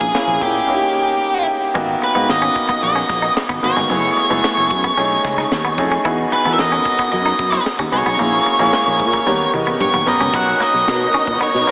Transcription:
Already playing: A#3 C#4 E4 G#4
0.01 A#1, kick, closed hi-hat
0.14 A#3 C#4 E4 G#4, snare
0.27 A#1, closed hi-hat
0.40 A#2 A#3 C#4 E4 G4 G#4, kick, closed hi-hat
0.55 closed hi-hat
0.67 A#3 C#4 D#4 E4
0.74 G4
1.74 G#1 G#3 A#3 B3 D#4 F#4, kick, crash
1.88 closed hi-hat
2.01 B4, muted clean electric guitar stroke, closed hi-hat
2.14 G#2 A#3 B3 D#4 F#4, closed hi-hat
2.29 G#1 D#5, snare
2.42 C#4, closed hi-hat
2.56 muted clean electric guitar stroke, kick, closed hi-hat
2.69 B3, kick, closed hi-hat
2.82 A#1 D#5, closed hi-hat
2.95 C#4, snare, closed hi-hat
3.09 A#1, muted clean electric guitar stroke, kick, snare, closed hi-hat
3.22 D#4, closed hi-hat
3.37 snare
3.49 G#1 B3, kick, closed hi-hat
3.62 G#1 A#3 B3 D#4 F#4 C#5, muted clean electric guitar stroke, open hi-hat
3.76 G1 G#3, snare, closed hi-hat
3.89 F#1 F#3 A3 B3 E4 G#4, closed hi-hat
4.03 closed hi-hat
4.17 muted clean electric guitar stroke, closed hi-hat
4.30 F#1 G#3 A3 B3 E4 G#4, closed hi-hat
4.44 A3, snare
4.57 F#1, muted clean electric guitar stroke, closed hi-hat
4.71 F#2, kick, closed hi-hat
4.84 B3, kick, closed hi-hat
4.97 B1 A3 C#4 D#4 G#4, closed hi-hat
5.11 closed hi-hat
5.25 C#2, muted clean electric guitar stroke, kick, snare, closed hi-hat
5.38 D#4, snare, closed hi-hat
5.52 D#2, snare
5.64 B3, closed hi-hat
5.78 F2 A3 C#4 D#4 G#4, muted clean electric guitar stroke, kick, open hi-hat
5.91 C#4, closed hi-hat
6.05 E2 B3 D#4 E4 F#4 G#4, kick, closed hi-hat
6.18 closed hi-hat
6.31 B4, muted clean electric guitar stroke, closed hi-hat
6.45 E3 B3 D#4 F#4 A4, closed hi-hat
6.53 A#4 E5
6.59 E2 D#5, snare
6.72 C#4, closed hi-hat
6.85 muted clean electric guitar stroke, kick, closed hi-hat
6.99 B3, kick, closed hi-hat
7.12 F#2 D#5, closed hi-hat
7.25 D#4, snare, closed hi-hat
7.39 F#2, muted clean electric guitar stroke, kick, snare, closed hi-hat
7.52 E4, snare, closed hi-hat
7.66 snare
7.79 D#2 C#4, kick, closed hi-hat
7.92 C2 B3 D#4 F#4 G#4 C#5, muted clean electric guitar stroke, open hi-hat
8.06 B1 B3, closed hi-hat
8.18 A#1 A#3 C#4 E4 G#4, closed hi-hat
8.32 closed hi-hat
8.46 muted clean electric guitar stroke, closed hi-hat
8.59 A#1 A#3 C#4 E4 G#4, closed hi-hat
8.73 G#3, snare
8.86 A#1, muted clean electric guitar stroke, closed hi-hat
9.00 A#2, kick, closed hi-hat
9.13 A#3, kick, closed hi-hat
9.26 D#2 G3 B3 C#4 G4 A#4, high tom
9.53 E2 D#5, muted clean electric guitar stroke, mid tom
9.67 B3
9.80 G2 C#5 G5, mid tom
9.94 D#2 B3, mid tom
10.06 B3 C#4 G4 A#4 D#5 B5, muted clean electric guitar stroke, floor tom
10.20 C#2 C#4, floor tom
10.33 B1 A#3 B3 C#4 D#4 F#4 A#4 F#5, kick, crash
10.47 muted clean electric guitar stroke
10.60 A#3 D#5, closed hi-hat
10.74 B1
10.87 B2, snare, closed hi-hat
11.14 C#4, closed hi-hat
11.27 A#2, kick
11.40 B3 C#5, muted fretless electric bass stroke, closed hi-hat
11.54 B2, snare
11.67 C#4 D4 F#4 A#4, muted clean electric guitar stroke, snare, closed hi-hat

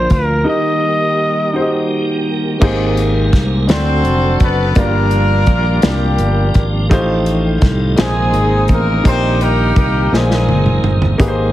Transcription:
Already playing: A#2 D3 F3 A#3 D4 F4 A#4 C5
0.10 D2 A#4, kick, closed hi-hat
0.44 D#3 G3 D#4 G4 A#4
0.49 G4 D#5
1.53 D#4 F#4 C5
1.61 G4
2.59 G#1 G#2 G#3 A#3 C4 D#4 G4 G#4 A#4 C5, kick, crash
2.97 closed hi-hat
3.33 C2, kick, snare, closed hi-hat
3.67 D2 D3 F#3 C4 D4 F#4 A4 C5 D5, snare, closed hi-hat
3.71 A4
4.05 F1, closed hi-hat
4.40 F#1 B3 B4, kick, closed hi-hat
4.75 G1 G2 F3 A#3 D4 F4 G4 D5, kick, closed hi-hat
4.79 A#3 D4 F4 A#4
5.11 closed hi-hat
5.46 A#1, kick, closed hi-hat
5.82 C2 A#3 D4 F4 G4 D5, snare, closed hi-hat
5.87 G3 A#3 D4 G4
6.18 G1, closed hi-hat
6.54 G#1, kick, closed hi-hat
6.90 A1 A2 A3 D#4 F4 G4 C5, kick, closed hi-hat
7.26 closed hi-hat
7.62 C2, kick, snare, closed hi-hat
7.96 A#1 C3 D#3 G#3 A#3 C4 D4 D#4 F4 G#4 C5, snare, closed hi-hat
8.03 D#4
8.34 G#1, closed hi-hat
8.68 A1 A#3 A#4, kick, closed hi-hat
9.04 A#1 A#2 D#3 G3 C4 D#4 G4 A#4 C5, kick, closed hi-hat
9.08 D#4 G4
9.41 A#3 A#4, closed hi-hat
9.76 C2 A#3 A#4, kick, closed hi-hat
10.12 A#1 A#2 G#3 A#3 C4 D#4 F4 G#4 C5, snare
10.31 snare
10.47 F#1, high tom
10.66 mid tom
10.83 G1, mid tom
11.02 floor tom
11.18 G#1 G#2 D#3 A#3 D#4 G4 G#4 B4, kick, closed hi-hat
11.28 C5

